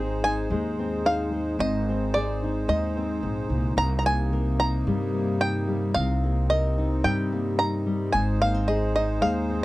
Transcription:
0.00 0.46 G#1 loud
0.00 1.56 G#2 medium
0.00 0.51 G#3 medium
0.00 3.74 G#3 medium
0.00 0.79 C4 medium
0.00 0.24 D#4 medium
0.00 1.56 D#4 medium
0.00 1.57 G#4 medium
0.00 3.74 C5 loud
0.00 0.20 G5 loud
0.24 1.05 D#4 medium
0.24 1.06 G#5 loud
0.50 1.56 D#2 medium
0.50 1.31 G#3 medium
0.79 1.88 C4 medium
1.06 2.43 D#4 medium
1.06 1.56 F5 medium
1.32 1.56 G#3 medium
1.59 2.64 G#1 loud
1.59 3.22 G#2 medium
1.59 3.75 D#4 medium
1.59 2.11 D#5 loud
1.89 2.97 C4 medium
2.14 3.75 G#4 medium
2.14 2.69 D5 medium
2.44 4.60 D#4 medium
2.68 3.20 D#2 medium
2.68 3.75 G#3 medium
2.68 3.20 D#5 medium
2.97 4.05 C4 medium
3.23 3.48 A#1 medium
3.23 3.50 G#2 medium
3.50 3.75 C2 medium
3.50 3.78 A#2 medium
3.76 4.82 C2 loud
3.76 8.09 C3 medium
3.76 5.94 C3 medium
3.76 5.93 A#3 medium
3.76 9.65 D#4 medium
3.76 3.98 A#5 loud
3.99 4.05 A#5 medium
4.06 5.13 A#3 medium
4.06 4.56 G#5 loud
4.33 5.93 A#4 medium
4.60 5.41 D#4 medium
4.60 5.37 A#5 loud
4.87 5.92 G2 medium
4.87 5.66 G3 medium
5.14 6.22 A#3 medium
5.41 6.78 D#4 medium
5.41 5.97 G5 loud
5.67 5.92 G3 medium
5.94 7.01 C2 loud
5.94 8.14 C3 medium
5.94 8.12 C4 medium
5.94 6.46 F5 loud
6.24 7.31 A#3 medium
6.50 8.11 A#4 medium
6.50 7.01 D#5 medium
6.78 7.59 D#4 medium
7.04 8.10 G2 medium
7.04 7.85 G3 medium
7.04 7.58 G5 loud
7.32 8.14 A#3 medium
7.59 8.96 D#4 medium
7.59 8.10 A#5 loud
7.86 8.10 G3 medium
8.12 9.19 G#1 loud
8.12 9.65 G#2 medium
8.12 9.65 G#3 medium
8.12 9.65 C5 loud
8.12 8.39 G#5 loud
8.40 8.54 A#3 medium
8.40 8.67 F5 loud
8.54 9.49 C4 medium
8.68 9.65 G#4 medium
8.68 8.93 D#5 medium
8.96 9.65 D#4 medium
8.96 9.24 D#5 medium
9.21 9.65 D#2 medium
9.21 9.65 G#3 medium
9.21 9.63 F5 loud
9.50 9.65 C4 medium

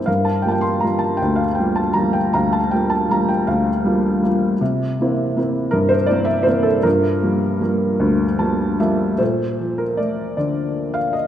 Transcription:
0.06 2.32 G2 soft
0.06 1.19 A#4 soft
0.06 0.25 F5 medium
0.25 0.46 A5 medium
0.42 0.82 G3 soft
0.42 0.83 A#3 soft
0.42 0.83 F4 soft
0.42 0.49 G5 medium
0.48 0.64 G5 medium
0.48 0.54 A5 soft
0.61 0.83 C6 medium
0.80 1.45 G3 soft
0.80 1.00 A#5 medium
0.84 1.46 A#3 soft
0.84 1.45 F4 soft
0.99 1.21 A5 medium
1.17 1.40 G5 medium
1.22 2.33 D2 soft
1.36 1.56 F5 medium
1.55 1.77 G5 medium
1.59 1.94 G3 soft
1.59 1.95 A#3 soft
1.59 1.95 F4 soft
1.76 1.97 A5 medium
1.93 2.56 G3 soft
1.93 2.57 A#3 soft
1.93 2.57 F4 soft
1.93 2.15 A#5 medium
2.13 2.34 G5 medium
2.33 3.46 D2 medium
2.33 3.43 F5 soft
2.33 2.54 A#5 medium
2.53 2.73 A5 medium
2.71 3.08 G3 soft
2.71 3.08 A#3 soft
2.71 3.08 F4 soft
2.71 2.91 G5 medium
2.90 3.10 A5 medium
3.09 3.69 G3 soft
3.09 3.69 A#3 soft
3.09 3.69 F4 soft
3.09 3.30 A#5 medium
3.29 3.48 G5 medium
3.47 4.57 D2 medium
3.47 4.28 F5 medium
3.84 4.21 G3 soft
3.84 4.21 A#3 soft
3.84 4.22 F4 soft
4.22 4.53 G3 soft
4.22 4.53 A#3 soft
4.22 4.54 F4 soft
4.61 6.81 C3 medium
5.00 5.35 A#3 soft
5.00 5.35 C4 soft
5.00 5.36 E4 soft
5.37 5.95 A#3 soft
5.37 5.95 C4 soft
5.37 5.96 E4 soft
5.71 6.82 G2 medium
5.71 5.91 A#4 medium
5.89 6.07 C5 medium
6.06 6.45 A#3 soft
6.06 6.45 C4 soft
6.06 6.45 E4 soft
6.06 6.27 D5 medium
6.25 6.46 E5 medium
6.43 6.77 A#3 soft
6.43 6.77 C4 soft
6.43 6.77 E4 medium
6.43 6.65 C5 medium
6.63 6.84 A4 medium
6.83 9.16 G2 medium
6.83 8.77 F4 medium
6.83 8.76 A#4 medium
7.23 7.59 F3 soft
7.23 7.59 G3 soft
7.23 7.60 A#3 soft
7.60 8.24 F3 soft
7.60 8.24 G3 soft
7.60 8.24 A#3 soft
8.00 9.16 D2 medium
8.38 8.78 F3 soft
8.38 8.78 G3 soft
8.38 8.78 A#3 medium
8.38 8.77 A5 medium
8.79 9.12 F3 soft
8.79 9.12 G3 soft
8.79 9.12 A3 soft
8.79 9.12 A#3 medium
8.79 9.17 E5 medium
9.18 11.27 A#2 soft
9.18 10.35 A4 soft
9.18 9.81 C5 medium
9.59 11.11 F3 soft
9.78 9.97 A#4 medium
9.97 11.27 A3 soft
9.97 10.36 D5 medium
10.37 11.27 D3 soft
10.37 10.98 D5 medium
10.94 11.15 F5 medium
11.13 11.27 D#5 medium

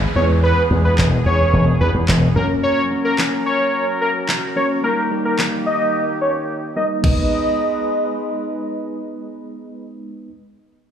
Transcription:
0.00 0.14 G#3 medium
0.00 0.14 D#4 medium
0.00 0.14 B4 medium
0.00 downlifter medium
0.15 0.51 E2 medium
0.15 2.34 E3 medium
0.15 0.61 G#3 medium
0.15 0.61 B3 medium
0.15 2.34 B3 medium
0.15 0.61 E4 medium
0.15 2.34 G#4 medium
0.15 0.61 B4 medium
0.15 0.25 C#5 medium
0.43 0.62 B4 loud
0.71 0.89 E2 medium
0.71 1.62 G#3 medium
0.71 1.62 B3 medium
0.71 1.62 E4 medium
0.71 1.62 G#4 medium
0.85 0.94 B4 medium
0.98 1.16 E1 medium
0.98 snare medium
0.98 clap loud
1.26 1.44 E2 medium
1.26 1.65 C#5 medium
1.53 1.71 E1 medium
1.81 1.90 E2 loud
1.81 1.90 B4 medium
1.95 2.04 E2 loud
2.08 2.26 E1 medium
2.08 snare loud
2.08 clap loud
2.36 2.54 F#2 medium
2.36 2.81 F#3 medium
2.36 4.81 F#3 medium
2.36 2.81 A#3 medium
2.36 4.81 C#4 medium
2.36 2.82 C#4 medium
2.36 2.45 A#4 medium
2.36 4.81 A#4 medium
2.36 2.82 A#4 medium
2.63 2.82 C#5 loud
2.91 3.82 F#3 medium
2.91 3.82 A#3 medium
2.91 3.82 C#4 medium
2.91 3.82 A#4 medium
3.05 3.14 A#4 medium
3.18 snare medium
3.18 clap loud
3.46 3.85 C#5 medium
4.01 4.11 A#4 medium
4.29 snare medium
4.29 clap loud
4.56 4.79 F#3 medium
4.56 4.79 A#3 medium
4.56 4.79 C#4 medium
4.56 4.79 A#4 medium
4.56 4.66 C#5 medium
4.84 6.87 D#3 medium
4.84 5.06 G3 medium
4.84 5.06 A#3 medium
4.84 6.87 A#3 medium
4.84 5.07 D#4 medium
4.84 6.87 G4 medium
4.84 5.03 A#4 loud
4.84 5.07 A#4 medium
5.11 6.02 G3 medium
5.11 6.02 A#3 medium
5.11 6.02 D#4 medium
5.11 6.03 A#4 medium
5.25 5.35 A#4 medium
5.39 snare medium
5.39 clap loud
5.66 6.05 D#5 medium
6.21 6.31 C#5 medium
6.76 6.99 G3 medium
6.76 6.99 A#3 medium
6.76 6.99 D#4 medium
6.76 6.99 A#4 medium
6.76 6.86 D#5 medium
7.02 10.27 G#3 medium
7.02 10.00 G#3 medium
7.02 10.28 B3 medium
7.02 10.00 D#4 medium
7.02 10.29 D#4 medium
7.02 10.00 B4 medium
7.02 10.31 B4 medium
7.02 8.65 D#5 medium
7.02 kick loud
7.02 crash medium

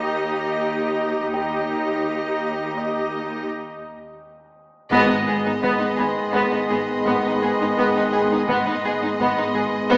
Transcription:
0.00 1.30 D#2 soft
0.00 1.30 D#4 soft
0.00 1.30 G4 soft
0.00 1.30 D#5 soft
1.33 3.44 D#2 soft
1.33 3.44 D#4 soft
1.33 3.44 G4 soft
1.33 3.44 D#5 soft
1.33 3.44 G5 soft
2.77 3.44 D#5 soft
2.77 3.45 D#6 soft
4.90 5.08 G#1 medium
4.90 5.07 G#2 medium
4.90 5.94 G#2 medium
4.90 8.44 D#3 medium
4.90 8.44 G#3 medium
4.90 5.07 B3 medium
4.90 8.44 B3 medium
4.90 8.44 G#4 medium
4.90 8.44 D#5 soft
4.90 9.97 B5 soft
4.90 taiko medium
5.08 5.16 G#2 soft
5.08 5.16 B3 soft
5.08 5.16 D#4 soft
5.26 5.34 G#1 soft
5.26 5.34 G#2 soft
5.26 5.34 B3 soft
5.26 5.34 G#4 soft
5.44 5.52 G#2 soft
5.44 5.51 B3 soft
5.44 5.52 D#4 soft
5.62 5.70 G#1 medium
5.62 5.70 G#2 soft
5.62 5.79 B3 medium
5.62 9.97 C6 soft
5.62 taiko medium
5.80 5.87 G#2 soft
5.80 5.88 B3 soft
5.80 5.87 D#4 soft
5.97 6.06 G#1 soft
5.97 6.05 G#2 soft
5.97 6.06 B3 soft
5.97 6.05 G#4 soft
5.97 8.09 B5 soft
6.33 6.42 G#1 medium
6.33 6.41 G#2 medium
6.33 6.50 B3 soft
6.33 taiko medium
6.51 6.59 G#2 soft
6.51 6.59 B3 soft
6.51 6.59 D#4 soft
6.69 6.77 G#1 soft
6.69 6.77 G#2 soft
6.69 6.77 B3 soft
6.69 6.77 G#4 soft
7.05 7.13 G#1 soft
7.05 7.12 G#2 medium
7.05 7.22 B3 soft
7.05 taiko medium
7.23 7.30 G#2 soft
7.23 7.30 B3 soft
7.23 7.31 D#4 soft
7.41 7.49 G#1 soft
7.41 7.48 G#2 soft
7.41 7.48 B3 soft
7.41 7.49 G#4 soft
7.59 7.66 G#2 soft
7.59 7.66 B3 soft
7.59 7.67 D#4 soft
7.76 7.84 G#1 soft
7.76 7.84 G#2 soft
7.76 7.93 B3 medium
7.76 7.94 B3 soft
7.76 taiko medium
7.95 8.02 G#2 soft
7.95 8.02 B3 soft
7.95 8.03 D#4 soft
8.12 8.20 G#1 soft
8.12 8.20 G#2 soft
8.12 8.20 B3 soft
8.12 8.20 G#4 soft
8.30 8.37 G#2 soft
8.30 8.37 B3 soft
8.30 8.39 D#4 soft
8.48 8.55 G#1 medium
8.48 8.55 G#2 medium
8.48 9.97 D#3 soft
8.48 9.97 G#3 soft
8.48 8.64 B3 medium
8.48 8.65 B3 soft
8.48 9.97 B3 medium
8.48 9.97 G#4 medium
8.48 9.97 D#5 soft
8.48 taiko medium
8.65 8.73 G#2 soft
8.65 8.73 B3 soft
8.65 8.74 D#4 soft
8.83 8.91 G#1 soft
8.83 8.90 G#2 soft
8.83 8.91 B3 soft
8.83 8.92 G#4 soft
9.01 9.08 G#2 soft
9.01 9.08 B3 soft
9.01 9.10 D#4 soft
9.19 9.27 G#1 medium
9.19 9.26 G#2 soft
9.19 9.36 B3 medium
9.19 9.37 B3 soft
9.19 taiko medium
9.37 9.44 G#2 soft
9.37 9.44 B3 soft
9.37 9.44 D#4 soft
9.54 9.62 G#1 soft
9.54 9.62 G#2 soft
9.54 9.62 B3 soft
9.54 9.61 G#4 soft
9.90 9.97 G#1 medium
9.90 9.97 G#2 medium
9.90 9.97 B3 medium
9.90 taiko medium

